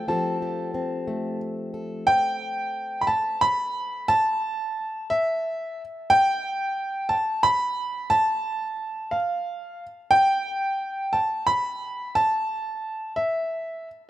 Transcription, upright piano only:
0.08 1.38 A5 medium
2.07 3.04 G5 loud
3.01 3.08 B5 medium
3.07 3.42 A5 loud
3.41 4.10 B5 loud
4.08 5.12 A5 loud
5.10 5.81 E5 medium
6.10 7.13 G5 loud
7.09 7.44 A5 loud
7.43 8.12 B5 loud
8.10 9.14 A5 loud
9.11 9.83 F5 medium
10.11 11.15 G5 loud
11.13 11.47 A5 loud
11.47 12.16 B5 loud
12.15 13.12 A5 loud
13.16 13.87 E5 medium

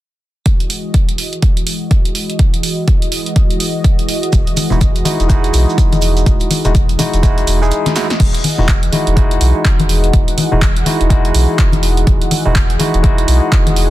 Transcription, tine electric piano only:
4.71 4.78 G#3 medium
4.71 4.79 D#4 medium
4.71 4.79 E4 medium
4.71 4.79 F#4 medium
5.05 5.27 G#3 medium
5.05 5.27 D#4 medium
5.05 5.27 E4 medium
5.05 5.28 F#4 medium
5.28 6.61 G#3 medium
5.28 6.61 D#4 medium
5.28 6.62 E4 medium
5.28 6.62 F#4 medium
6.64 6.72 G#3 medium
6.64 6.72 D#4 medium
6.64 6.72 E4 medium
6.64 6.72 F#4 medium
6.98 7.21 G#3 medium
6.98 7.21 D#4 medium
6.98 7.21 E4 medium
6.98 7.21 F#4 medium
7.23 7.59 G#3 medium
7.23 7.59 D#4 medium
7.23 7.59 E4 medium
7.23 7.59 F#4 medium
7.61 7.93 G#3 medium
7.61 7.93 D#4 medium
7.61 7.94 E4 medium
7.61 7.94 G#4 medium
7.95 8.06 G#3 medium
7.95 8.06 D#4 medium
7.95 8.07 E4 medium
7.95 8.07 F#4 medium
8.58 8.66 G#3 medium
8.58 8.66 D#4 medium
8.58 8.66 E4 medium
8.58 8.66 F#4 medium
8.92 9.14 G#3 medium
8.92 9.14 D#4 medium
8.92 9.15 E4 medium
8.92 9.15 F#4 medium
9.16 10.48 G#3 medium
9.16 10.49 D#4 medium
9.16 10.49 E4 medium
9.16 10.49 F#4 medium
10.52 10.59 G#3 medium
10.52 10.59 D#4 medium
10.52 10.59 E4 medium
10.52 10.60 F#4 medium
10.86 11.08 G#3 medium
10.86 11.08 D#4 medium
10.86 11.08 E4 medium
10.86 11.08 F#4 medium
11.09 12.42 G#3 medium
11.09 12.42 D#4 medium
11.09 12.42 E4 medium
11.09 12.43 F#4 medium
12.45 12.53 G#3 medium
12.45 12.53 D#4 medium
12.45 12.53 E4 medium
12.45 12.53 F#4 medium
12.79 13.01 G#3 medium
12.79 13.01 D#4 medium
12.79 13.02 E4 medium
12.79 13.02 F#4 medium
13.03 13.90 G#3 medium
13.03 13.90 D#4 medium
13.03 13.90 E4 medium
13.03 13.90 F#4 medium

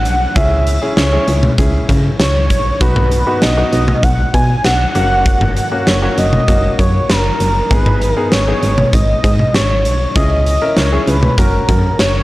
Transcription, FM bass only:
0.05 0.27 B1 medium
0.36 0.79 C#2 loud
0.97 1.19 C#2 loud
1.28 1.49 C#2 loud
1.58 1.80 C#2 loud
1.89 2.10 C#3 medium
2.20 2.52 C#2 loud
2.50 2.72 A#1 medium
2.81 3.24 B1 loud
3.42 3.64 B1 loud
3.73 3.94 B1 loud
4.03 4.25 B1 loud
4.34 4.55 B2 medium
4.65 4.86 B1 loud
4.95 5.59 F#1 loud
5.87 6.08 F#1 loud
6.18 6.39 F#1 loud
6.48 6.70 F#1 loud
6.79 7.00 F#2 medium
7.10 7.31 F#1 loud
7.40 7.62 F#1 medium
7.71 8.14 G#1 loud
8.32 8.53 G#1 loud
8.63 8.84 G#1 loud
8.93 9.15 G#1 loud
9.24 9.45 G#2 loud
9.54 9.86 G#1 loud
9.85 10.06 B1 medium
10.16 10.59 C#2 loud
10.77 10.98 C#2 loud
11.07 11.29 C#2 loud
11.38 11.59 F#1 loud
11.69 11.90 F#2 loud
11.99 12.21 F#1 medium

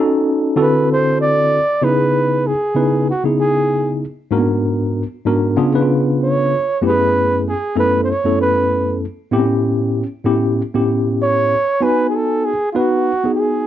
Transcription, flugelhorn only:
0.61 0.88 B4 medium
0.92 1.20 C5 medium
1.21 1.86 D5 loud
1.84 2.48 B4 medium
2.47 3.08 G#4 medium
3.10 3.23 F#4 medium
3.40 3.98 G#4 medium
6.23 6.80 C#5 loud
6.85 7.42 B4 loud
7.48 7.76 G#4 medium
7.79 8.01 B4 medium
8.04 8.12 C5 medium
8.11 8.40 C#5 loud
8.41 8.98 B4 medium
11.22 11.85 C#5 loud
11.83 12.08 B4 medium
12.09 12.17 G#4 medium
12.15 12.47 A4 medium
12.45 12.70 G#4 medium
12.72 12.79 F4 medium
12.77 13.33 F#4 loud
13.35 13.41 G4 medium
13.40 13.67 G#4 medium

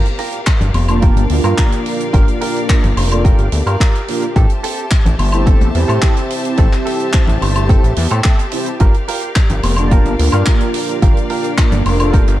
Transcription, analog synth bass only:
0.61 0.71 G1 medium
0.74 1.10 F1 medium
1.16 1.27 G1 medium
1.30 1.41 D2 medium
1.44 1.54 G2 medium
2.14 2.24 G1 loud
2.83 2.94 G1 medium
2.97 3.33 F1 medium
3.39 3.49 G1 medium
3.52 3.63 D2 medium
3.66 3.77 G2 medium
4.36 4.46 A1 loud
5.05 5.16 A1 medium
5.19 5.55 G1 medium
5.61 5.71 A1 medium
5.75 5.85 E2 medium
5.89 5.99 A2 medium
6.58 6.69 A1 medium
7.28 7.38 A1 medium
7.42 7.78 G1 medium
7.83 7.94 A1 medium
7.97 8.08 E2 medium
8.11 8.21 A2 medium
8.81 8.91 G1 loud
9.50 9.60 G1 medium
9.64 10.00 F1 medium
10.05 10.16 G1 medium
10.19 10.30 D2 medium
10.33 10.43 G2 medium
11.03 11.13 G1 medium
11.72 11.82 G1 medium
11.86 12.22 F1 medium
12.28 12.38 G1 loud

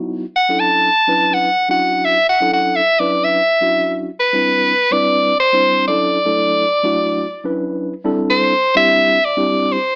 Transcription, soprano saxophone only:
0.36 0.61 F#5 medium
0.60 1.35 A5 loud
1.34 1.70 F#5 medium
1.71 2.06 F#5 medium
2.05 2.28 E5 medium
2.29 2.51 F#5 medium
2.53 2.78 F#5 medium
2.76 3.01 E5 medium
2.99 3.26 D5 medium
3.24 3.96 E5 medium
4.20 4.94 B4 medium
4.92 5.39 D5 loud
5.40 5.85 C5 medium
5.88 7.52 D5 medium
8.30 8.74 C5 medium
8.77 9.27 E5 loud
9.25 9.74 D5 medium
9.72 9.95 C5 medium

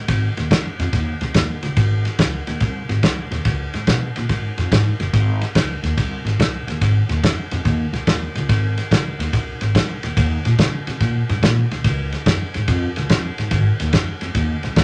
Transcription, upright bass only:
0.08 0.27 G#1 medium
0.37 0.47 D#2 medium
0.51 0.70 F#2 medium
0.79 0.89 F2 medium
0.93 1.12 D#2 medium
1.21 1.31 C2 medium
1.34 1.54 D#2 medium
1.63 1.72 C#2 medium
1.77 2.05 G#1 medium
2.19 2.38 C#2 medium
2.47 2.57 D#2 medium
2.61 2.80 C2 medium
2.89 2.99 G#1 medium
3.03 3.22 C2 medium
3.31 3.41 D#2 medium
3.46 3.65 C#2 medium
3.74 3.83 G#2 medium
3.88 4.07 B2 medium
4.17 4.26 A#2 medium
4.29 4.48 G#2 medium
4.58 4.67 F2 medium
4.72 4.91 G#2 medium
5.00 5.09 F#1 medium
5.14 5.42 G#1 medium
5.56 5.75 C#2 medium
5.83 5.92 D#2 medium
5.98 6.17 C2 medium
6.25 6.34 G#1 medium
6.40 6.59 C2 medium
6.67 6.77 D#2 medium
6.82 7.01 G#1 loud
7.09 7.19 D#2 medium
7.24 7.43 F#2 medium
7.52 7.61 F2 medium
7.65 7.84 D#2 medium
7.93 8.03 C2 medium
8.07 8.26 D#2 medium
8.35 8.45 C#2 medium
8.49 8.78 G#1 medium
8.92 9.10 C#2 medium
9.19 9.28 D#2 medium
9.34 9.52 C2 medium
9.61 9.71 G#1 medium
9.75 9.94 C2 medium
10.04 10.13 D#2 medium
10.17 10.36 D#2 medium
10.45 10.55 A#2 medium
10.59 10.78 C#3 medium
10.87 10.97 C3 medium
11.01 11.20 A#2 medium
11.29 11.38 G2 loud
11.42 11.61 A#2 medium
11.72 11.81 C2 medium
11.85 12.13 C#2 medium
12.26 12.45 F#2 medium
12.56 12.64 G#2 medium
12.68 12.87 F2 loud
12.97 13.06 C#2 medium
13.10 13.29 F2 medium
13.38 13.52 G#2 medium
13.51 13.70 G#1 loud
13.80 13.89 D#2 medium
13.93 14.12 F#2 medium
14.22 14.31 F2 medium
14.35 14.54 D#2 medium
14.64 14.73 C2 medium
14.77 14.84 D#2 medium

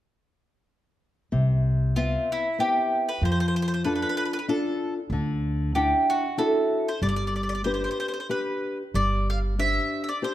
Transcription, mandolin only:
1.96 2.31 F4 medium
2.32 2.60 E4 medium
2.60 3.09 G4 medium
3.09 3.23 B4 medium
3.25 3.30 C5 medium
3.32 3.39 C5 medium
3.40 3.47 C5 medium
3.48 3.55 C5 medium
3.56 3.61 C5 medium
3.62 3.67 C5 medium
3.68 3.73 C5 medium
3.74 3.81 C5 medium
3.84 3.92 B4 medium
3.95 4.01 B4 medium
4.02 4.08 B4 medium
4.09 4.16 B4 medium
4.17 4.23 B4 medium
4.25 4.31 B4 medium
4.33 4.38 B4 medium
4.39 4.45 B4 medium
4.49 4.93 A4 medium
5.75 6.06 G4 medium
6.10 6.36 F#4 medium
6.38 6.88 A4 medium
6.88 7.01 C5 medium
7.03 7.07 D5 medium
7.09 7.15 D5 medium
7.16 7.24 D5 medium
7.27 7.33 D5 medium
7.36 7.41 D5 medium
7.43 7.48 D5 soft
7.49 7.54 D5 medium
7.55 7.61 D5 medium
7.64 7.73 C5 medium
7.74 7.81 C5 medium
7.84 7.90 C5 medium
7.91 7.98 C5 medium
8.00 8.06 C5 medium
8.08 8.12 C5 medium
8.14 8.19 C5 medium
8.20 8.26 C5 soft
8.31 8.77 B4 medium
8.95 9.27 D5 medium
9.30 9.38 F5 medium
9.59 10.03 E5 medium
10.04 10.08 E5 medium
10.09 10.22 D5 medium
10.24 10.34 C5 medium

